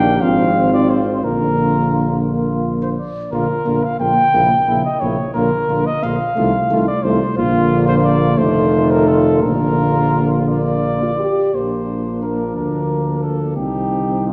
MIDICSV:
0, 0, Header, 1, 6, 480
1, 0, Start_track
1, 0, Tempo, 692042
1, 857, Time_signature, 6, 3, 24, 8
1, 2305, Tempo, 675676
1, 6145, Tempo, 705882
1, 8065, Tempo, 680272
1, 10024, End_track
2, 0, Start_track
2, 0, Title_t, "Cornet"
2, 0, Program_c, 0, 56
2, 0, Note_on_c, 0, 79, 90
2, 147, Note_on_c, 0, 77, 83
2, 157, Note_off_c, 0, 79, 0
2, 500, Note_off_c, 0, 77, 0
2, 511, Note_on_c, 0, 74, 78
2, 624, Note_on_c, 0, 72, 66
2, 635, Note_off_c, 0, 74, 0
2, 863, Note_on_c, 0, 70, 82
2, 873, Note_off_c, 0, 72, 0
2, 1584, Note_off_c, 0, 70, 0
2, 2305, Note_on_c, 0, 70, 83
2, 2674, Note_on_c, 0, 77, 75
2, 2685, Note_off_c, 0, 70, 0
2, 2781, Note_off_c, 0, 77, 0
2, 2785, Note_on_c, 0, 79, 91
2, 3376, Note_off_c, 0, 79, 0
2, 3387, Note_on_c, 0, 75, 69
2, 3497, Note_on_c, 0, 73, 67
2, 3508, Note_off_c, 0, 75, 0
2, 3734, Note_off_c, 0, 73, 0
2, 3738, Note_on_c, 0, 70, 87
2, 4105, Note_on_c, 0, 75, 84
2, 4116, Note_off_c, 0, 70, 0
2, 4227, Note_on_c, 0, 77, 81
2, 4238, Note_off_c, 0, 75, 0
2, 4826, Note_off_c, 0, 77, 0
2, 4830, Note_on_c, 0, 74, 80
2, 4939, Note_on_c, 0, 72, 79
2, 4950, Note_off_c, 0, 74, 0
2, 5177, Note_off_c, 0, 72, 0
2, 5182, Note_on_c, 0, 65, 97
2, 5532, Note_off_c, 0, 65, 0
2, 5540, Note_on_c, 0, 72, 93
2, 5594, Note_off_c, 0, 72, 0
2, 5658, Note_on_c, 0, 74, 85
2, 5895, Note_on_c, 0, 72, 86
2, 5905, Note_off_c, 0, 74, 0
2, 6270, Note_on_c, 0, 70, 75
2, 6280, Note_off_c, 0, 72, 0
2, 6381, Note_on_c, 0, 69, 83
2, 6391, Note_off_c, 0, 70, 0
2, 6615, Note_off_c, 0, 69, 0
2, 6619, Note_on_c, 0, 70, 86
2, 7222, Note_off_c, 0, 70, 0
2, 7338, Note_on_c, 0, 74, 71
2, 8061, Note_on_c, 0, 72, 62
2, 8072, Note_off_c, 0, 74, 0
2, 8535, Note_off_c, 0, 72, 0
2, 8540, Note_on_c, 0, 70, 54
2, 8771, Note_off_c, 0, 70, 0
2, 8780, Note_on_c, 0, 70, 53
2, 9243, Note_off_c, 0, 70, 0
2, 9250, Note_on_c, 0, 69, 51
2, 9480, Note_off_c, 0, 69, 0
2, 9484, Note_on_c, 0, 67, 62
2, 9969, Note_off_c, 0, 67, 0
2, 9982, Note_on_c, 0, 65, 53
2, 10024, Note_off_c, 0, 65, 0
2, 10024, End_track
3, 0, Start_track
3, 0, Title_t, "Trumpet"
3, 0, Program_c, 1, 56
3, 0, Note_on_c, 1, 67, 66
3, 150, Note_on_c, 1, 65, 61
3, 160, Note_off_c, 1, 67, 0
3, 854, Note_off_c, 1, 65, 0
3, 858, Note_on_c, 1, 65, 50
3, 1520, Note_off_c, 1, 65, 0
3, 1578, Note_on_c, 1, 65, 56
3, 1917, Note_off_c, 1, 65, 0
3, 1956, Note_on_c, 1, 72, 51
3, 2008, Note_off_c, 1, 72, 0
3, 2064, Note_on_c, 1, 74, 44
3, 2300, Note_off_c, 1, 74, 0
3, 2312, Note_on_c, 1, 65, 55
3, 2419, Note_off_c, 1, 65, 0
3, 2548, Note_on_c, 1, 65, 44
3, 2656, Note_off_c, 1, 65, 0
3, 2792, Note_on_c, 1, 65, 50
3, 2900, Note_off_c, 1, 65, 0
3, 3033, Note_on_c, 1, 64, 49
3, 3140, Note_off_c, 1, 64, 0
3, 3269, Note_on_c, 1, 64, 53
3, 3377, Note_off_c, 1, 64, 0
3, 3515, Note_on_c, 1, 64, 49
3, 3620, Note_off_c, 1, 64, 0
3, 3747, Note_on_c, 1, 65, 52
3, 3854, Note_off_c, 1, 65, 0
3, 3992, Note_on_c, 1, 65, 49
3, 4100, Note_off_c, 1, 65, 0
3, 4240, Note_on_c, 1, 65, 49
3, 4346, Note_off_c, 1, 65, 0
3, 4480, Note_on_c, 1, 65, 56
3, 4586, Note_off_c, 1, 65, 0
3, 4712, Note_on_c, 1, 65, 64
3, 4819, Note_off_c, 1, 65, 0
3, 4962, Note_on_c, 1, 65, 56
3, 5065, Note_off_c, 1, 65, 0
3, 5191, Note_on_c, 1, 65, 69
3, 5875, Note_off_c, 1, 65, 0
3, 5898, Note_on_c, 1, 65, 67
3, 6605, Note_off_c, 1, 65, 0
3, 6623, Note_on_c, 1, 65, 61
3, 7815, Note_off_c, 1, 65, 0
3, 8069, Note_on_c, 1, 62, 39
3, 9463, Note_off_c, 1, 62, 0
3, 9492, Note_on_c, 1, 63, 37
3, 10024, Note_off_c, 1, 63, 0
3, 10024, End_track
4, 0, Start_track
4, 0, Title_t, "French horn"
4, 0, Program_c, 2, 60
4, 0, Note_on_c, 2, 62, 74
4, 148, Note_on_c, 2, 60, 68
4, 158, Note_off_c, 2, 62, 0
4, 857, Note_off_c, 2, 60, 0
4, 861, Note_on_c, 2, 58, 59
4, 2057, Note_off_c, 2, 58, 0
4, 2306, Note_on_c, 2, 58, 50
4, 2414, Note_off_c, 2, 58, 0
4, 2539, Note_on_c, 2, 58, 54
4, 2649, Note_off_c, 2, 58, 0
4, 2784, Note_on_c, 2, 58, 48
4, 2894, Note_off_c, 2, 58, 0
4, 3025, Note_on_c, 2, 58, 56
4, 3134, Note_off_c, 2, 58, 0
4, 3269, Note_on_c, 2, 58, 48
4, 3377, Note_off_c, 2, 58, 0
4, 3508, Note_on_c, 2, 58, 51
4, 3615, Note_off_c, 2, 58, 0
4, 3747, Note_on_c, 2, 58, 60
4, 3855, Note_off_c, 2, 58, 0
4, 3987, Note_on_c, 2, 58, 54
4, 4096, Note_off_c, 2, 58, 0
4, 4222, Note_on_c, 2, 58, 55
4, 4333, Note_off_c, 2, 58, 0
4, 4460, Note_on_c, 2, 57, 57
4, 4570, Note_off_c, 2, 57, 0
4, 4705, Note_on_c, 2, 57, 55
4, 4813, Note_off_c, 2, 57, 0
4, 4947, Note_on_c, 2, 57, 64
4, 5054, Note_off_c, 2, 57, 0
4, 5185, Note_on_c, 2, 58, 64
4, 5890, Note_on_c, 2, 57, 67
4, 5901, Note_off_c, 2, 58, 0
4, 6613, Note_on_c, 2, 58, 61
4, 6623, Note_off_c, 2, 57, 0
4, 7286, Note_off_c, 2, 58, 0
4, 7332, Note_on_c, 2, 58, 60
4, 7674, Note_off_c, 2, 58, 0
4, 7708, Note_on_c, 2, 65, 67
4, 7817, Note_off_c, 2, 65, 0
4, 7821, Note_on_c, 2, 67, 66
4, 8055, Note_off_c, 2, 67, 0
4, 8059, Note_on_c, 2, 58, 43
4, 8747, Note_off_c, 2, 58, 0
4, 8775, Note_on_c, 2, 58, 35
4, 9485, Note_on_c, 2, 60, 41
4, 9496, Note_off_c, 2, 58, 0
4, 10024, Note_off_c, 2, 60, 0
4, 10024, End_track
5, 0, Start_track
5, 0, Title_t, "Trombone"
5, 0, Program_c, 3, 57
5, 0, Note_on_c, 3, 51, 72
5, 138, Note_off_c, 3, 51, 0
5, 142, Note_on_c, 3, 53, 66
5, 490, Note_off_c, 3, 53, 0
5, 498, Note_on_c, 3, 51, 59
5, 851, Note_off_c, 3, 51, 0
5, 856, Note_on_c, 3, 50, 59
5, 2054, Note_off_c, 3, 50, 0
5, 2308, Note_on_c, 3, 50, 50
5, 2416, Note_off_c, 3, 50, 0
5, 2545, Note_on_c, 3, 50, 50
5, 2654, Note_off_c, 3, 50, 0
5, 2788, Note_on_c, 3, 50, 43
5, 2897, Note_off_c, 3, 50, 0
5, 3034, Note_on_c, 3, 49, 48
5, 3141, Note_off_c, 3, 49, 0
5, 3271, Note_on_c, 3, 49, 46
5, 3378, Note_off_c, 3, 49, 0
5, 3512, Note_on_c, 3, 49, 49
5, 3618, Note_off_c, 3, 49, 0
5, 3746, Note_on_c, 3, 50, 55
5, 3853, Note_off_c, 3, 50, 0
5, 3981, Note_on_c, 3, 50, 60
5, 4092, Note_off_c, 3, 50, 0
5, 4223, Note_on_c, 3, 50, 45
5, 4333, Note_off_c, 3, 50, 0
5, 4470, Note_on_c, 3, 51, 56
5, 4578, Note_off_c, 3, 51, 0
5, 4712, Note_on_c, 3, 51, 58
5, 4819, Note_off_c, 3, 51, 0
5, 4947, Note_on_c, 3, 51, 53
5, 5054, Note_off_c, 3, 51, 0
5, 5184, Note_on_c, 3, 50, 71
5, 5871, Note_off_c, 3, 50, 0
5, 5902, Note_on_c, 3, 51, 72
5, 6626, Note_on_c, 3, 50, 63
5, 6636, Note_off_c, 3, 51, 0
5, 7841, Note_off_c, 3, 50, 0
5, 8065, Note_on_c, 3, 53, 39
5, 9462, Note_off_c, 3, 53, 0
5, 9488, Note_on_c, 3, 51, 38
5, 10024, Note_off_c, 3, 51, 0
5, 10024, End_track
6, 0, Start_track
6, 0, Title_t, "Tuba"
6, 0, Program_c, 4, 58
6, 0, Note_on_c, 4, 34, 77
6, 142, Note_on_c, 4, 32, 75
6, 152, Note_off_c, 4, 34, 0
6, 854, Note_off_c, 4, 32, 0
6, 858, Note_on_c, 4, 34, 64
6, 2055, Note_off_c, 4, 34, 0
6, 2304, Note_on_c, 4, 34, 63
6, 2413, Note_off_c, 4, 34, 0
6, 2550, Note_on_c, 4, 34, 52
6, 2658, Note_off_c, 4, 34, 0
6, 2787, Note_on_c, 4, 34, 57
6, 2896, Note_off_c, 4, 34, 0
6, 3026, Note_on_c, 4, 34, 65
6, 3135, Note_off_c, 4, 34, 0
6, 3269, Note_on_c, 4, 34, 50
6, 3376, Note_off_c, 4, 34, 0
6, 3508, Note_on_c, 4, 34, 64
6, 3615, Note_off_c, 4, 34, 0
6, 3752, Note_on_c, 4, 34, 60
6, 3858, Note_off_c, 4, 34, 0
6, 3989, Note_on_c, 4, 34, 56
6, 4098, Note_off_c, 4, 34, 0
6, 4235, Note_on_c, 4, 34, 59
6, 4343, Note_off_c, 4, 34, 0
6, 4479, Note_on_c, 4, 36, 73
6, 4585, Note_off_c, 4, 36, 0
6, 4713, Note_on_c, 4, 36, 63
6, 4819, Note_off_c, 4, 36, 0
6, 4952, Note_on_c, 4, 36, 70
6, 5058, Note_off_c, 4, 36, 0
6, 5188, Note_on_c, 4, 34, 82
6, 5873, Note_off_c, 4, 34, 0
6, 5903, Note_on_c, 4, 29, 82
6, 6621, Note_on_c, 4, 34, 69
6, 6631, Note_off_c, 4, 29, 0
6, 7839, Note_off_c, 4, 34, 0
6, 8061, Note_on_c, 4, 34, 44
6, 8748, Note_off_c, 4, 34, 0
6, 8774, Note_on_c, 4, 38, 42
6, 9482, Note_on_c, 4, 36, 43
6, 9492, Note_off_c, 4, 38, 0
6, 10024, Note_off_c, 4, 36, 0
6, 10024, End_track
0, 0, End_of_file